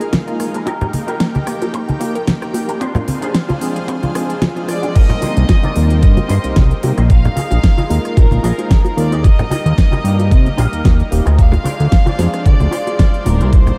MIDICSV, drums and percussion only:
0, 0, Header, 1, 2, 480
1, 0, Start_track
1, 0, Tempo, 535714
1, 599, Time_signature, 4, 2, 24, 8
1, 12349, End_track
2, 0, Start_track
2, 0, Title_t, "Drums"
2, 8, Note_on_c, 9, 42, 50
2, 98, Note_off_c, 9, 42, 0
2, 115, Note_on_c, 9, 38, 121
2, 116, Note_on_c, 9, 42, 54
2, 119, Note_on_c, 9, 36, 103
2, 119, Note_on_c, 9, 63, 64
2, 120, Note_on_c, 9, 60, 54
2, 204, Note_off_c, 9, 38, 0
2, 205, Note_off_c, 9, 42, 0
2, 208, Note_off_c, 9, 36, 0
2, 209, Note_off_c, 9, 60, 0
2, 209, Note_off_c, 9, 63, 0
2, 248, Note_on_c, 9, 42, 25
2, 338, Note_off_c, 9, 42, 0
2, 357, Note_on_c, 9, 37, 61
2, 357, Note_on_c, 9, 46, 106
2, 446, Note_off_c, 9, 37, 0
2, 446, Note_off_c, 9, 46, 0
2, 487, Note_on_c, 9, 42, 50
2, 577, Note_off_c, 9, 42, 0
2, 596, Note_on_c, 9, 60, 81
2, 598, Note_on_c, 9, 42, 48
2, 599, Note_on_c, 9, 36, 117
2, 685, Note_off_c, 9, 60, 0
2, 687, Note_off_c, 9, 42, 0
2, 688, Note_off_c, 9, 36, 0
2, 728, Note_on_c, 9, 42, 23
2, 728, Note_on_c, 9, 64, 89
2, 817, Note_off_c, 9, 42, 0
2, 818, Note_off_c, 9, 64, 0
2, 836, Note_on_c, 9, 46, 109
2, 838, Note_on_c, 9, 63, 60
2, 926, Note_off_c, 9, 46, 0
2, 927, Note_off_c, 9, 63, 0
2, 968, Note_on_c, 9, 42, 50
2, 971, Note_on_c, 9, 60, 47
2, 1057, Note_off_c, 9, 42, 0
2, 1060, Note_off_c, 9, 60, 0
2, 1076, Note_on_c, 9, 38, 118
2, 1077, Note_on_c, 9, 42, 49
2, 1079, Note_on_c, 9, 36, 112
2, 1166, Note_off_c, 9, 38, 0
2, 1167, Note_off_c, 9, 42, 0
2, 1168, Note_off_c, 9, 36, 0
2, 1209, Note_on_c, 9, 42, 26
2, 1214, Note_on_c, 9, 63, 73
2, 1299, Note_off_c, 9, 42, 0
2, 1303, Note_off_c, 9, 63, 0
2, 1316, Note_on_c, 9, 37, 72
2, 1316, Note_on_c, 9, 46, 109
2, 1406, Note_off_c, 9, 37, 0
2, 1406, Note_off_c, 9, 46, 0
2, 1449, Note_on_c, 9, 42, 50
2, 1453, Note_on_c, 9, 60, 74
2, 1538, Note_off_c, 9, 42, 0
2, 1543, Note_off_c, 9, 60, 0
2, 1558, Note_on_c, 9, 36, 122
2, 1558, Note_on_c, 9, 42, 49
2, 1648, Note_off_c, 9, 36, 0
2, 1648, Note_off_c, 9, 42, 0
2, 1690, Note_on_c, 9, 42, 26
2, 1695, Note_on_c, 9, 63, 72
2, 1779, Note_off_c, 9, 42, 0
2, 1785, Note_off_c, 9, 63, 0
2, 1798, Note_on_c, 9, 46, 108
2, 1802, Note_on_c, 9, 60, 51
2, 1888, Note_off_c, 9, 46, 0
2, 1892, Note_off_c, 9, 60, 0
2, 1931, Note_on_c, 9, 42, 50
2, 2020, Note_off_c, 9, 42, 0
2, 2038, Note_on_c, 9, 36, 110
2, 2038, Note_on_c, 9, 38, 120
2, 2039, Note_on_c, 9, 42, 52
2, 2041, Note_on_c, 9, 63, 67
2, 2128, Note_off_c, 9, 36, 0
2, 2128, Note_off_c, 9, 38, 0
2, 2129, Note_off_c, 9, 42, 0
2, 2130, Note_off_c, 9, 63, 0
2, 2169, Note_on_c, 9, 37, 56
2, 2169, Note_on_c, 9, 42, 25
2, 2259, Note_off_c, 9, 37, 0
2, 2259, Note_off_c, 9, 42, 0
2, 2273, Note_on_c, 9, 60, 69
2, 2279, Note_on_c, 9, 46, 108
2, 2362, Note_off_c, 9, 60, 0
2, 2369, Note_off_c, 9, 46, 0
2, 2408, Note_on_c, 9, 42, 48
2, 2498, Note_off_c, 9, 42, 0
2, 2518, Note_on_c, 9, 36, 119
2, 2519, Note_on_c, 9, 42, 50
2, 2608, Note_off_c, 9, 36, 0
2, 2609, Note_off_c, 9, 42, 0
2, 2641, Note_on_c, 9, 64, 91
2, 2648, Note_on_c, 9, 60, 54
2, 2649, Note_on_c, 9, 42, 24
2, 2730, Note_off_c, 9, 64, 0
2, 2738, Note_off_c, 9, 60, 0
2, 2739, Note_off_c, 9, 42, 0
2, 2758, Note_on_c, 9, 46, 109
2, 2760, Note_on_c, 9, 63, 67
2, 2847, Note_off_c, 9, 46, 0
2, 2850, Note_off_c, 9, 63, 0
2, 2888, Note_on_c, 9, 42, 50
2, 2977, Note_off_c, 9, 42, 0
2, 2997, Note_on_c, 9, 38, 118
2, 2998, Note_on_c, 9, 36, 106
2, 2998, Note_on_c, 9, 42, 51
2, 3086, Note_off_c, 9, 38, 0
2, 3088, Note_off_c, 9, 36, 0
2, 3088, Note_off_c, 9, 42, 0
2, 3124, Note_on_c, 9, 60, 79
2, 3131, Note_on_c, 9, 42, 25
2, 3133, Note_on_c, 9, 63, 66
2, 3213, Note_off_c, 9, 60, 0
2, 3220, Note_off_c, 9, 42, 0
2, 3223, Note_off_c, 9, 63, 0
2, 3238, Note_on_c, 9, 46, 112
2, 3328, Note_off_c, 9, 46, 0
2, 3370, Note_on_c, 9, 42, 47
2, 3460, Note_off_c, 9, 42, 0
2, 3476, Note_on_c, 9, 60, 48
2, 3478, Note_on_c, 9, 36, 124
2, 3480, Note_on_c, 9, 42, 50
2, 3566, Note_off_c, 9, 60, 0
2, 3568, Note_off_c, 9, 36, 0
2, 3569, Note_off_c, 9, 42, 0
2, 3610, Note_on_c, 9, 42, 26
2, 3613, Note_on_c, 9, 63, 66
2, 3700, Note_off_c, 9, 42, 0
2, 3702, Note_off_c, 9, 63, 0
2, 3720, Note_on_c, 9, 37, 80
2, 3720, Note_on_c, 9, 46, 110
2, 3810, Note_off_c, 9, 37, 0
2, 3810, Note_off_c, 9, 46, 0
2, 3851, Note_on_c, 9, 42, 51
2, 3941, Note_off_c, 9, 42, 0
2, 3955, Note_on_c, 9, 63, 66
2, 3958, Note_on_c, 9, 38, 120
2, 3958, Note_on_c, 9, 60, 81
2, 3960, Note_on_c, 9, 36, 108
2, 3960, Note_on_c, 9, 42, 51
2, 4045, Note_off_c, 9, 63, 0
2, 4048, Note_off_c, 9, 38, 0
2, 4048, Note_off_c, 9, 60, 0
2, 4049, Note_off_c, 9, 36, 0
2, 4049, Note_off_c, 9, 42, 0
2, 4090, Note_on_c, 9, 42, 25
2, 4180, Note_off_c, 9, 42, 0
2, 4198, Note_on_c, 9, 37, 62
2, 4198, Note_on_c, 9, 46, 110
2, 4288, Note_off_c, 9, 37, 0
2, 4288, Note_off_c, 9, 46, 0
2, 4329, Note_on_c, 9, 42, 49
2, 4332, Note_on_c, 9, 60, 50
2, 4419, Note_off_c, 9, 42, 0
2, 4422, Note_off_c, 9, 60, 0
2, 4440, Note_on_c, 9, 42, 55
2, 4440, Note_on_c, 9, 49, 97
2, 4441, Note_on_c, 9, 36, 119
2, 4530, Note_off_c, 9, 42, 0
2, 4530, Note_off_c, 9, 49, 0
2, 4531, Note_off_c, 9, 36, 0
2, 4565, Note_on_c, 9, 64, 92
2, 4569, Note_on_c, 9, 42, 27
2, 4655, Note_off_c, 9, 64, 0
2, 4659, Note_off_c, 9, 42, 0
2, 4677, Note_on_c, 9, 46, 106
2, 4679, Note_on_c, 9, 63, 62
2, 4681, Note_on_c, 9, 60, 53
2, 4767, Note_off_c, 9, 46, 0
2, 4769, Note_off_c, 9, 63, 0
2, 4770, Note_off_c, 9, 60, 0
2, 4809, Note_on_c, 9, 42, 55
2, 4898, Note_off_c, 9, 42, 0
2, 4917, Note_on_c, 9, 38, 121
2, 4918, Note_on_c, 9, 42, 57
2, 4921, Note_on_c, 9, 36, 108
2, 4921, Note_on_c, 9, 60, 85
2, 5007, Note_off_c, 9, 38, 0
2, 5008, Note_off_c, 9, 42, 0
2, 5010, Note_off_c, 9, 60, 0
2, 5011, Note_off_c, 9, 36, 0
2, 5049, Note_on_c, 9, 42, 27
2, 5051, Note_on_c, 9, 63, 66
2, 5138, Note_off_c, 9, 42, 0
2, 5141, Note_off_c, 9, 63, 0
2, 5157, Note_on_c, 9, 46, 108
2, 5247, Note_off_c, 9, 46, 0
2, 5289, Note_on_c, 9, 42, 53
2, 5294, Note_on_c, 9, 60, 58
2, 5379, Note_off_c, 9, 42, 0
2, 5384, Note_off_c, 9, 60, 0
2, 5399, Note_on_c, 9, 42, 53
2, 5401, Note_on_c, 9, 36, 118
2, 5488, Note_off_c, 9, 42, 0
2, 5491, Note_off_c, 9, 36, 0
2, 5526, Note_on_c, 9, 60, 84
2, 5528, Note_on_c, 9, 63, 61
2, 5530, Note_on_c, 9, 42, 28
2, 5616, Note_off_c, 9, 60, 0
2, 5617, Note_off_c, 9, 63, 0
2, 5619, Note_off_c, 9, 42, 0
2, 5640, Note_on_c, 9, 46, 103
2, 5729, Note_off_c, 9, 46, 0
2, 5770, Note_on_c, 9, 42, 53
2, 5859, Note_off_c, 9, 42, 0
2, 5878, Note_on_c, 9, 63, 58
2, 5879, Note_on_c, 9, 38, 127
2, 5880, Note_on_c, 9, 42, 57
2, 5881, Note_on_c, 9, 36, 104
2, 5884, Note_on_c, 9, 60, 54
2, 5968, Note_off_c, 9, 63, 0
2, 5969, Note_off_c, 9, 38, 0
2, 5970, Note_off_c, 9, 36, 0
2, 5970, Note_off_c, 9, 42, 0
2, 5974, Note_off_c, 9, 60, 0
2, 6012, Note_on_c, 9, 42, 27
2, 6102, Note_off_c, 9, 42, 0
2, 6120, Note_on_c, 9, 46, 107
2, 6123, Note_on_c, 9, 60, 87
2, 6209, Note_off_c, 9, 46, 0
2, 6213, Note_off_c, 9, 60, 0
2, 6251, Note_on_c, 9, 37, 63
2, 6251, Note_on_c, 9, 42, 55
2, 6341, Note_off_c, 9, 37, 0
2, 6341, Note_off_c, 9, 42, 0
2, 6360, Note_on_c, 9, 42, 52
2, 6361, Note_on_c, 9, 36, 122
2, 6450, Note_off_c, 9, 36, 0
2, 6450, Note_off_c, 9, 42, 0
2, 6494, Note_on_c, 9, 42, 25
2, 6497, Note_on_c, 9, 64, 90
2, 6498, Note_on_c, 9, 60, 54
2, 6583, Note_off_c, 9, 42, 0
2, 6587, Note_off_c, 9, 60, 0
2, 6587, Note_off_c, 9, 64, 0
2, 6598, Note_on_c, 9, 63, 67
2, 6601, Note_on_c, 9, 46, 107
2, 6687, Note_off_c, 9, 63, 0
2, 6691, Note_off_c, 9, 46, 0
2, 6727, Note_on_c, 9, 60, 80
2, 6733, Note_on_c, 9, 42, 55
2, 6816, Note_off_c, 9, 60, 0
2, 6822, Note_off_c, 9, 42, 0
2, 6841, Note_on_c, 9, 36, 110
2, 6842, Note_on_c, 9, 38, 123
2, 6843, Note_on_c, 9, 42, 53
2, 6931, Note_off_c, 9, 36, 0
2, 6931, Note_off_c, 9, 38, 0
2, 6932, Note_off_c, 9, 42, 0
2, 6969, Note_on_c, 9, 63, 65
2, 6973, Note_on_c, 9, 42, 27
2, 7059, Note_off_c, 9, 63, 0
2, 7063, Note_off_c, 9, 42, 0
2, 7075, Note_on_c, 9, 60, 47
2, 7083, Note_on_c, 9, 46, 109
2, 7164, Note_off_c, 9, 60, 0
2, 7172, Note_off_c, 9, 46, 0
2, 7213, Note_on_c, 9, 37, 58
2, 7213, Note_on_c, 9, 42, 53
2, 7303, Note_off_c, 9, 37, 0
2, 7303, Note_off_c, 9, 42, 0
2, 7319, Note_on_c, 9, 60, 84
2, 7321, Note_on_c, 9, 36, 123
2, 7323, Note_on_c, 9, 42, 52
2, 7408, Note_off_c, 9, 60, 0
2, 7410, Note_off_c, 9, 36, 0
2, 7413, Note_off_c, 9, 42, 0
2, 7446, Note_on_c, 9, 63, 70
2, 7455, Note_on_c, 9, 42, 28
2, 7535, Note_off_c, 9, 63, 0
2, 7544, Note_off_c, 9, 42, 0
2, 7562, Note_on_c, 9, 46, 106
2, 7652, Note_off_c, 9, 46, 0
2, 7694, Note_on_c, 9, 42, 52
2, 7694, Note_on_c, 9, 60, 53
2, 7783, Note_off_c, 9, 60, 0
2, 7784, Note_off_c, 9, 42, 0
2, 7794, Note_on_c, 9, 63, 60
2, 7801, Note_on_c, 9, 36, 111
2, 7803, Note_on_c, 9, 38, 127
2, 7804, Note_on_c, 9, 42, 55
2, 7884, Note_off_c, 9, 63, 0
2, 7891, Note_off_c, 9, 36, 0
2, 7892, Note_off_c, 9, 38, 0
2, 7893, Note_off_c, 9, 42, 0
2, 7925, Note_on_c, 9, 60, 84
2, 7935, Note_on_c, 9, 42, 26
2, 8015, Note_off_c, 9, 60, 0
2, 8025, Note_off_c, 9, 42, 0
2, 8044, Note_on_c, 9, 46, 107
2, 8134, Note_off_c, 9, 46, 0
2, 8174, Note_on_c, 9, 42, 51
2, 8264, Note_off_c, 9, 42, 0
2, 8280, Note_on_c, 9, 60, 56
2, 8282, Note_on_c, 9, 36, 125
2, 8284, Note_on_c, 9, 42, 51
2, 8370, Note_off_c, 9, 60, 0
2, 8372, Note_off_c, 9, 36, 0
2, 8373, Note_off_c, 9, 42, 0
2, 8414, Note_on_c, 9, 64, 96
2, 8416, Note_on_c, 9, 42, 26
2, 8504, Note_off_c, 9, 64, 0
2, 8506, Note_off_c, 9, 42, 0
2, 8518, Note_on_c, 9, 63, 65
2, 8522, Note_on_c, 9, 60, 76
2, 8525, Note_on_c, 9, 46, 113
2, 8608, Note_off_c, 9, 63, 0
2, 8612, Note_off_c, 9, 60, 0
2, 8615, Note_off_c, 9, 46, 0
2, 8656, Note_on_c, 9, 42, 51
2, 8746, Note_off_c, 9, 42, 0
2, 8761, Note_on_c, 9, 36, 110
2, 8765, Note_on_c, 9, 38, 122
2, 8766, Note_on_c, 9, 42, 52
2, 8851, Note_off_c, 9, 36, 0
2, 8854, Note_off_c, 9, 38, 0
2, 8856, Note_off_c, 9, 42, 0
2, 8886, Note_on_c, 9, 63, 73
2, 8887, Note_on_c, 9, 60, 58
2, 8896, Note_on_c, 9, 42, 26
2, 8976, Note_off_c, 9, 60, 0
2, 8976, Note_off_c, 9, 63, 0
2, 8985, Note_off_c, 9, 42, 0
2, 9004, Note_on_c, 9, 46, 111
2, 9094, Note_off_c, 9, 46, 0
2, 9129, Note_on_c, 9, 60, 75
2, 9135, Note_on_c, 9, 42, 50
2, 9218, Note_off_c, 9, 60, 0
2, 9225, Note_off_c, 9, 42, 0
2, 9242, Note_on_c, 9, 36, 127
2, 9245, Note_on_c, 9, 42, 51
2, 9331, Note_off_c, 9, 36, 0
2, 9334, Note_off_c, 9, 42, 0
2, 9374, Note_on_c, 9, 63, 64
2, 9375, Note_on_c, 9, 42, 26
2, 9464, Note_off_c, 9, 63, 0
2, 9465, Note_off_c, 9, 42, 0
2, 9477, Note_on_c, 9, 60, 49
2, 9482, Note_on_c, 9, 46, 108
2, 9567, Note_off_c, 9, 60, 0
2, 9572, Note_off_c, 9, 46, 0
2, 9614, Note_on_c, 9, 42, 52
2, 9704, Note_off_c, 9, 42, 0
2, 9715, Note_on_c, 9, 63, 59
2, 9722, Note_on_c, 9, 36, 109
2, 9723, Note_on_c, 9, 38, 121
2, 9724, Note_on_c, 9, 42, 54
2, 9725, Note_on_c, 9, 60, 79
2, 9804, Note_off_c, 9, 63, 0
2, 9811, Note_off_c, 9, 36, 0
2, 9812, Note_off_c, 9, 38, 0
2, 9813, Note_off_c, 9, 42, 0
2, 9814, Note_off_c, 9, 60, 0
2, 9855, Note_on_c, 9, 42, 25
2, 9945, Note_off_c, 9, 42, 0
2, 9964, Note_on_c, 9, 46, 107
2, 10053, Note_off_c, 9, 46, 0
2, 10087, Note_on_c, 9, 60, 50
2, 10095, Note_on_c, 9, 37, 60
2, 10095, Note_on_c, 9, 42, 49
2, 10177, Note_off_c, 9, 60, 0
2, 10185, Note_off_c, 9, 37, 0
2, 10185, Note_off_c, 9, 42, 0
2, 10201, Note_on_c, 9, 36, 119
2, 10204, Note_on_c, 9, 42, 50
2, 10291, Note_off_c, 9, 36, 0
2, 10293, Note_off_c, 9, 42, 0
2, 10320, Note_on_c, 9, 64, 84
2, 10325, Note_on_c, 9, 60, 68
2, 10335, Note_on_c, 9, 42, 25
2, 10409, Note_off_c, 9, 64, 0
2, 10415, Note_off_c, 9, 60, 0
2, 10425, Note_off_c, 9, 42, 0
2, 10436, Note_on_c, 9, 63, 63
2, 10443, Note_on_c, 9, 46, 112
2, 10525, Note_off_c, 9, 63, 0
2, 10533, Note_off_c, 9, 46, 0
2, 10574, Note_on_c, 9, 42, 48
2, 10664, Note_off_c, 9, 42, 0
2, 10673, Note_on_c, 9, 60, 53
2, 10681, Note_on_c, 9, 36, 112
2, 10681, Note_on_c, 9, 38, 117
2, 10682, Note_on_c, 9, 42, 50
2, 10763, Note_off_c, 9, 60, 0
2, 10770, Note_off_c, 9, 36, 0
2, 10771, Note_off_c, 9, 38, 0
2, 10772, Note_off_c, 9, 42, 0
2, 10804, Note_on_c, 9, 63, 71
2, 10813, Note_on_c, 9, 42, 25
2, 10894, Note_off_c, 9, 63, 0
2, 10902, Note_off_c, 9, 42, 0
2, 10919, Note_on_c, 9, 60, 77
2, 10920, Note_on_c, 9, 38, 62
2, 10921, Note_on_c, 9, 46, 112
2, 11009, Note_off_c, 9, 60, 0
2, 11010, Note_off_c, 9, 38, 0
2, 11011, Note_off_c, 9, 46, 0
2, 11053, Note_on_c, 9, 37, 57
2, 11053, Note_on_c, 9, 42, 48
2, 11142, Note_off_c, 9, 37, 0
2, 11142, Note_off_c, 9, 42, 0
2, 11160, Note_on_c, 9, 36, 122
2, 11162, Note_on_c, 9, 42, 49
2, 11250, Note_off_c, 9, 36, 0
2, 11251, Note_off_c, 9, 42, 0
2, 11288, Note_on_c, 9, 63, 75
2, 11290, Note_on_c, 9, 60, 50
2, 11294, Note_on_c, 9, 42, 26
2, 11378, Note_off_c, 9, 63, 0
2, 11380, Note_off_c, 9, 60, 0
2, 11383, Note_off_c, 9, 42, 0
2, 11402, Note_on_c, 9, 46, 104
2, 11491, Note_off_c, 9, 46, 0
2, 11530, Note_on_c, 9, 60, 72
2, 11533, Note_on_c, 9, 42, 50
2, 11619, Note_off_c, 9, 60, 0
2, 11623, Note_off_c, 9, 42, 0
2, 11640, Note_on_c, 9, 36, 106
2, 11641, Note_on_c, 9, 63, 59
2, 11642, Note_on_c, 9, 38, 120
2, 11643, Note_on_c, 9, 42, 52
2, 11730, Note_off_c, 9, 36, 0
2, 11731, Note_off_c, 9, 38, 0
2, 11731, Note_off_c, 9, 63, 0
2, 11732, Note_off_c, 9, 42, 0
2, 11773, Note_on_c, 9, 42, 25
2, 11863, Note_off_c, 9, 42, 0
2, 11879, Note_on_c, 9, 60, 55
2, 11880, Note_on_c, 9, 46, 110
2, 11968, Note_off_c, 9, 60, 0
2, 11970, Note_off_c, 9, 46, 0
2, 12012, Note_on_c, 9, 42, 47
2, 12102, Note_off_c, 9, 42, 0
2, 12120, Note_on_c, 9, 36, 118
2, 12122, Note_on_c, 9, 42, 49
2, 12210, Note_off_c, 9, 36, 0
2, 12211, Note_off_c, 9, 42, 0
2, 12248, Note_on_c, 9, 64, 86
2, 12252, Note_on_c, 9, 42, 25
2, 12337, Note_off_c, 9, 64, 0
2, 12341, Note_off_c, 9, 42, 0
2, 12349, End_track
0, 0, End_of_file